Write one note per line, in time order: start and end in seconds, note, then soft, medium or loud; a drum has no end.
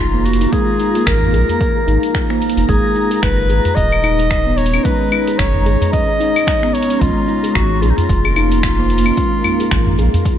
0.00 0.47 F1 medium
0.00 2.65 A#3 medium
0.00 0.27 F4 loud
0.00 2.65 F4 medium
0.00 10.38 A#5 medium
0.14 0.39 A#3 loud
0.25 0.54 F#4 medium
0.25 open hi-hat soft
0.25 shaker medium
0.33 open hi-hat medium
0.41 0.52 D#4 medium
0.41 open hi-hat soft
0.41 shaker soft
0.53 0.79 G#3 loud
0.53 1.07 G#4 loud
0.53 kick loud
0.53 open hi-hat soft
0.53 shaker soft
0.80 0.94 D#4 medium
0.80 open hi-hat soft
0.80 shaker medium
0.95 1.06 G#4 medium
0.95 open hi-hat soft
0.95 shaker soft
1.06 1.35 G#1 medium
1.06 2.41 A#4 loud
1.06 finger snap loud
1.06 kick loud
1.06 open hi-hat medium
1.06 shaker soft
1.22 udu medium
1.33 1.44 A#1 medium
1.33 1.42 G#4 loud
1.33 open hi-hat soft
1.33 shaker medium
1.49 open hi-hat soft
1.49 udu medium
1.49 shaker soft
1.61 kick loud
1.61 open hi-hat soft
1.61 shaker soft
1.76 1.87 G#4 medium
1.87 1.98 G#1 medium
1.87 1.97 D#4 medium
1.87 open hi-hat soft
1.87 shaker medium
2.03 open hi-hat soft
2.03 shaker soft
2.15 finger snap loud
2.15 kick loud
2.15 shaker soft
2.30 2.56 A#3 loud
2.30 finger snap soft
2.42 open hi-hat soft
2.42 shaker medium
2.50 open hi-hat soft
2.57 2.65 F1 medium
2.57 2.68 D#4 medium
2.57 open hi-hat soft
2.57 shaker soft
2.69 2.79 G#1 loud
2.69 2.95 G#3 medium
2.69 6.97 G#3 medium
2.69 4.83 D#4 medium
2.69 3.24 G#4 loud
2.69 kick loud
2.69 open hi-hat soft
2.69 shaker soft
2.96 3.11 D#4 medium
2.96 shaker medium
3.11 3.22 G#4 medium
3.11 open hi-hat soft
3.11 shaker soft
3.22 3.51 F#1 medium
3.22 3.77 B4 loud
3.22 finger snap medium
3.22 kick loud
3.22 open hi-hat medium
3.22 shaker soft
3.49 3.60 G#1 medium
3.49 3.59 G#4 loud
3.49 open hi-hat soft
3.49 shaker medium
3.65 open hi-hat soft
3.65 udu medium
3.65 shaker soft
3.75 4.79 D#1 medium
3.75 4.59 D#5 loud
3.75 kick loud
3.75 open hi-hat medium
3.75 shaker soft
3.92 4.03 G#4 medium
3.92 claves medium
4.04 4.13 D#4 medium
4.04 open hi-hat soft
4.04 claves medium
4.04 shaker medium
4.19 open hi-hat soft
4.19 shaker soft
4.31 finger snap medium
4.31 kick loud
4.31 shaker soft
4.46 4.72 B3 loud
4.57 4.86 C#5 loud
4.57 open hi-hat soft
4.57 shaker medium
4.66 open hi-hat soft
4.73 4.84 C#4 medium
4.73 open hi-hat soft
4.73 claves medium
4.73 shaker soft
4.84 5.11 G#3 medium
4.84 6.99 C#4 medium
4.84 5.40 B4 loud
4.84 kick loud
4.84 open hi-hat medium
4.84 shaker soft
5.12 5.27 D#4 medium
5.12 claves medium
5.12 shaker medium
5.28 5.39 G#4 medium
5.28 open hi-hat soft
5.28 shaker soft
5.38 5.68 F#1 medium
5.38 5.92 C#5 medium
5.38 finger snap medium
5.38 kick loud
5.38 open hi-hat medium
5.38 shaker soft
5.54 udu medium
5.66 5.77 G#1 medium
5.66 5.75 G#4 loud
5.66 open hi-hat soft
5.66 shaker medium
5.81 open hi-hat soft
5.81 udu medium
5.81 shaker soft
5.92 6.75 D#5 loud
5.92 kick loud
5.92 open hi-hat medium
5.92 shaker soft
6.09 6.20 G#4 medium
6.20 6.29 D#4 loud
6.20 open hi-hat soft
6.20 shaker medium
6.36 open hi-hat soft
6.36 claves medium
6.36 shaker soft
6.47 finger snap medium
6.47 kick loud
6.47 shaker soft
6.63 6.88 B3 loud
6.63 finger snap soft
6.74 7.02 C#5 loud
6.74 open hi-hat soft
6.74 shaker medium
6.83 open hi-hat medium
6.90 7.01 C#4 medium
6.90 open hi-hat soft
6.90 shaker soft
7.01 7.12 A#1 loud
7.01 7.27 G#3 loud
7.01 10.38 A#3 medium
7.01 7.56 F4 medium
7.01 10.38 F4 medium
7.01 kick loud
7.01 open hi-hat medium
7.01 shaker soft
7.28 7.43 D#4 medium
7.28 shaker medium
7.43 7.54 G#4 medium
7.43 open hi-hat soft
7.43 shaker soft
7.55 7.84 G#1 medium
7.55 7.83 F#4 medium
7.55 finger snap loud
7.55 kick medium
7.55 open hi-hat medium
7.55 shaker soft
7.81 7.93 A#1 medium
7.81 7.92 F4 medium
7.81 7.91 G#4 loud
7.81 open hi-hat soft
7.81 shaker medium
7.90 7.98 D#4 medium
7.97 10.38 F4 loud
7.97 open hi-hat soft
7.97 udu medium
7.97 shaker soft
8.09 9.12 F1 medium
8.09 kick loud
8.09 open hi-hat medium
8.09 shaker soft
8.25 8.36 G#4 medium
8.25 claves medium
8.36 8.45 D#4 medium
8.36 open hi-hat soft
8.36 claves medium
8.36 shaker medium
8.52 open hi-hat soft
8.52 shaker soft
8.63 finger snap medium
8.63 kick loud
8.63 shaker soft
8.79 9.04 A#3 loud
8.90 open hi-hat soft
8.90 shaker medium
8.98 open hi-hat medium
9.06 9.17 C#4 medium
9.06 open hi-hat soft
9.06 claves medium
9.06 shaker soft
9.17 9.43 G#3 loud
9.17 kick loud
9.17 open hi-hat medium
9.17 shaker soft
9.44 9.59 D#4 medium
9.44 open hi-hat soft
9.44 udu medium
9.44 claves medium
9.44 shaker medium
9.60 9.71 G#4 medium
9.60 open hi-hat soft
9.60 shaker soft
9.71 10.00 G#1 medium
9.71 finger snap loud
9.71 kick loud
9.71 open hi-hat medium
9.71 shaker soft
9.86 udu medium
9.99 10.09 A#1 medium
9.99 10.07 G#4 medium
9.99 open hi-hat soft
9.99 shaker medium
10.14 open hi-hat soft
10.14 udu medium
10.14 shaker soft
10.25 kick medium
10.25 open hi-hat medium
10.25 shaker soft